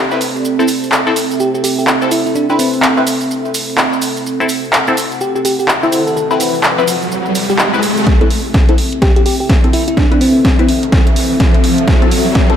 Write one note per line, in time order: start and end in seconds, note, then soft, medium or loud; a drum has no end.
0.00 8.03 C4 medium
0.00 0.35 G4 medium
0.00 8.03 A4 medium
0.00 0.44 D5 medium
0.11 0.20 C4 medium
0.11 0.20 E4 medium
0.11 0.20 B4 medium
0.11 maracas soft
0.21 open hi-hat loud
0.21 maracas medium
0.36 maracas soft
0.45 4.25 E5 medium
0.45 maracas medium
0.59 0.64 C4 medium
0.59 0.64 E4 medium
0.59 0.64 A4 loud
0.59 maracas soft
0.68 open hi-hat medium
0.68 maracas medium
0.84 maracas soft
0.92 clap loud
0.92 maracas medium
1.07 1.12 C4 medium
1.07 1.12 E4 medium
1.07 1.12 A4 loud
1.07 maracas soft
1.16 open hi-hat loud
1.16 maracas medium
1.31 maracas soft
1.40 1.49 G4 medium
1.40 maracas soft
1.54 1.60 G4 medium
1.54 maracas soft
1.64 1.73 G4 medium
1.64 open hi-hat loud
1.64 maracas medium
1.78 1.84 G4 medium
1.78 maracas soft
1.87 clap loud
1.87 maracas soft
2.02 2.46 C4 medium
2.02 2.46 E4 medium
2.02 2.46 A4 medium
2.02 maracas soft
2.11 2.21 E4 medium
2.11 open hi-hat loud
2.11 maracas medium
2.26 2.32 E4 medium
2.26 maracas soft
2.35 2.45 D4 medium
2.35 maracas soft
2.49 2.94 C4 medium
2.49 2.56 D4 medium
2.49 2.94 E4 medium
2.49 2.94 B4 medium
2.49 maracas soft
2.59 3.27 C4 medium
2.59 open hi-hat loud
2.59 maracas medium
2.73 maracas soft
2.82 clap loud
2.82 maracas soft
2.97 3.02 C4 medium
2.97 3.02 E4 medium
2.97 3.02 B4 loud
2.97 maracas soft
3.07 open hi-hat loud
3.07 maracas medium
3.21 maracas soft
3.31 maracas soft
3.45 maracas soft
3.54 open hi-hat loud
3.54 maracas medium
3.69 maracas soft
3.78 clap loud
3.78 maracas soft
3.93 maracas soft
4.02 open hi-hat loud
4.02 maracas medium
4.17 maracas soft
4.26 8.06 F#5 medium
4.26 riser medium
4.26 maracas soft
4.40 4.45 C4 medium
4.40 4.45 E4 medium
4.40 4.45 A4 loud
4.40 maracas soft
4.49 open hi-hat loud
4.49 maracas medium
4.64 maracas soft
4.73 clap loud
4.73 maracas soft
4.87 4.93 C4 medium
4.87 4.93 E4 medium
4.87 4.93 A4 loud
4.87 maracas soft
4.97 open hi-hat loud
4.97 maracas medium
5.12 maracas soft
5.21 5.30 G4 medium
5.21 maracas medium
5.35 5.41 G4 medium
5.35 maracas soft
5.45 5.54 G4 medium
5.45 open hi-hat loud
5.45 maracas medium
5.59 5.65 G4 medium
5.59 maracas soft
5.68 clap loud
5.68 maracas medium
5.83 6.27 C4 medium
5.83 6.27 E4 medium
5.83 5.89 E4 medium
5.83 6.27 A4 medium
5.83 maracas soft
5.92 6.02 E4 medium
5.92 open hi-hat medium
5.92 maracas medium
6.07 6.14 A4 medium
6.07 maracas soft
6.16 6.25 A4 medium
6.16 maracas soft
6.31 6.75 C4 medium
6.31 6.75 E4 medium
6.31 6.37 A4 medium
6.31 6.75 B4 loud
6.31 maracas soft
6.40 open hi-hat loud
6.40 maracas medium
6.54 maracas soft
6.63 clap loud
6.63 maracas soft
6.78 6.83 C4 medium
6.78 6.83 E4 medium
6.78 6.83 B4 loud
6.78 maracas soft
6.87 open hi-hat loud
6.87 maracas medium
7.02 maracas soft
7.12 maracas medium
7.26 maracas soft
7.35 open hi-hat loud
7.35 maracas medium
7.49 7.97 G4 medium
7.49 maracas soft
7.59 clap loud
7.59 maracas medium
7.73 7.82 C4 medium
7.73 7.82 E4 medium
7.73 7.82 B4 medium
7.73 maracas soft
7.82 open hi-hat loud
7.82 maracas medium
7.97 maracas soft
8.07 12.56 C4 medium
8.07 12.56 A4 medium
8.07 12.56 E5 medium
8.07 kick loud
8.07 snare soft
8.07 closed hi-hat medium
8.07 riser medium
8.21 8.26 C4 medium
8.21 8.26 E4 medium
8.21 8.26 A4 loud
8.21 closed hi-hat soft
8.30 open hi-hat loud
8.54 kick loud
8.54 snare soft
8.54 closed hi-hat medium
8.69 8.74 C4 medium
8.69 8.74 E4 medium
8.69 8.74 A4 loud
8.69 closed hi-hat soft
8.78 open hi-hat loud
8.93 closed hi-hat soft
9.02 9.11 G4 medium
9.02 kick loud
9.02 snare soft
9.02 closed hi-hat medium
9.16 9.22 G4 medium
9.16 closed hi-hat medium
9.26 9.35 G4 medium
9.26 open hi-hat loud
9.40 9.46 G4 medium
9.50 kick loud
9.50 snare soft
9.50 closed hi-hat medium
9.64 10.08 C4 medium
9.64 10.08 E4 medium
9.64 10.08 A4 medium
9.64 closed hi-hat soft
9.73 9.83 E4 medium
9.73 open hi-hat loud
9.88 9.94 E4 medium
9.88 closed hi-hat medium
9.97 10.06 D4 medium
9.97 kick loud
9.97 snare medium
9.97 closed hi-hat medium
10.12 10.56 C4 medium
10.12 10.18 D4 medium
10.12 10.56 E4 medium
10.12 10.56 B4 medium
10.12 closed hi-hat soft
10.21 10.89 C4 medium
10.21 open hi-hat loud
10.45 kick loud
10.45 snare medium
10.45 closed hi-hat medium
10.59 10.64 C4 medium
10.59 10.64 E4 medium
10.59 10.64 B4 loud
10.59 closed hi-hat soft
10.69 open hi-hat loud
10.83 closed hi-hat soft
10.92 kick loud
10.92 snare medium
10.92 closed hi-hat medium
11.07 closed hi-hat medium
11.16 open hi-hat loud
11.40 kick loud
11.40 snare medium
11.40 closed hi-hat medium
11.54 closed hi-hat soft
11.64 open hi-hat loud
11.78 closed hi-hat medium
11.88 kick loud
11.88 snare medium
11.88 closed hi-hat medium
12.02 12.07 C4 medium
12.02 12.07 E4 medium
12.02 12.07 A4 loud
12.02 closed hi-hat soft
12.11 open hi-hat loud
12.35 kick loud
12.35 snare medium
12.35 closed hi-hat medium
12.50 12.55 C4 medium
12.50 12.55 E4 medium
12.50 12.55 A4 loud
12.50 closed hi-hat soft